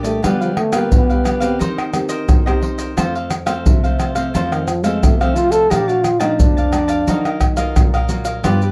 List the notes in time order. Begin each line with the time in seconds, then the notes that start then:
Already playing: A#2 G3 A#3 D4
0.03 A3 G4 D5 D#5, pandeiro, maracas
0.22 D3 G3 B3 D4 F4 G4 B4 F5, pandeiro, tamborim, maracas, surdo
0.41 F3 G4 B4 F5, pandeiro, maracas
0.57 A3, muted cavaquinho stroke, pandeiro, tamborim
0.72 G3 A#3 B3 F4 G4 B4 F5, pandeiro, tamborim, maracas
0.92 D3 B3, pandeiro, maracas, surdo
1.09 G4 B4 F5, pandeiro, maracas
1.24 G3 B3 D4 F4 G4 B4 F5, pandeiro, tamborim, maracas
1.40 A#3 C4 G4 B4 F5, pandeiro, maracas
1.59 D#3 D#4 A#4 C5 D#5, pandeiro, maracas, surdo
1.78 A#4 C5 D#5, pandeiro, tamborim, maracas
1.93 A#3 C4 G4, muted cavaquinho stroke, pandeiro, tamborim, maracas
2.09 A#4 C5 D#5, pandeiro, maracas
2.29 D#3, pandeiro, tamborim, maracas, surdo
2.46 A#3 C4 G4 A#4 C5 D#5, pandeiro, tamborim, maracas
2.61 D#4 A#4 C5 D#5, pandeiro
2.78 A#4 C5 D#5, pandeiro, maracas
2.97 F2 F3 A3 C4 F4 A4 C5 F5, pandeiro, tamborim, maracas, surdo
3.15 A4 C5 F5, pandeiro, maracas
3.30 muted cavaquinho stroke, pandeiro, tamborim, maracas
3.46 F3 A3 C4 A4 C5 F5, pandeiro, tamborim, maracas
3.66 C3, pandeiro, maracas, surdo
3.84 F3 A3 C4 A4 C5 F5, pandeiro, maracas
3.99 F4 A4 C5 F5, pandeiro, tamborim, maracas
4.15 F3 A3 C4 A4 C5 F5, pandeiro, maracas
4.34 F2 F3 A3 C4 F4 A4 C5 F5, pandeiro, maracas, surdo
4.52 D#3 A4 C5 F5, pandeiro, tamborim, maracas
4.67 F3, muted cavaquinho stroke, pandeiro, tamborim, maracas
4.83 F3 G#3 A3 C4 A4 C5 F5, pandeiro, maracas
5.03 C3 A3, pandeiro, tamborim, maracas, surdo
5.20 F3 A3 C4 A4 C5 F5, pandeiro, tamborim, maracas
5.35 F4 A4 C5 F5, pandeiro, maracas
5.51 A4 C5 F5, pandeiro, maracas
5.70 A#2 F3 A3 D4 G4 A#4 D5 F5 A5, pandeiro, tamborim, maracas, surdo
5.88 F#4 D5 F5 A5, pandeiro, maracas
6.03 F4, muted cavaquinho stroke, pandeiro, tamborim, maracas
6.20 F3 A3 D4 D#4 D5 F5 A5, pandeiro, tamborim, maracas
6.39 F2 D4, pandeiro, maracas, surdo
6.57 D5 F5 A5, pandeiro, maracas
6.72 F3 A3 D4 A#4 D5 F5 A5, pandeiro, tamborim, maracas
6.88 D5 F5 A5, pandeiro, maracas
7.07 D#3 F#3 A#3 F4 F#4 A#4 D#5 F5, pandeiro, maracas, surdo
7.25 A#4 D#5 F5, pandeiro, tamborim, maracas
7.41 muted cavaquinho stroke, pandeiro, tamborim, maracas, surdo
7.57 F#3 A#3 F4 A#4 D#5 F5, pandeiro, maracas
7.76 A#2, pandeiro, tamborim, maracas, surdo
7.94 A#4 D#5 F5, pandeiro, tamborim, maracas
8.09 F#3 A#3 F4 F#4 A#4 D#5 F5, pandeiro, maracas
8.25 A#4 D#5 F5, pandeiro, maracas
8.44 G2 F3 B3 D4 F4 G4 B4 D5, pandeiro, tamborim, maracas, surdo
8.61 G4 B4 D5, pandeiro, maracas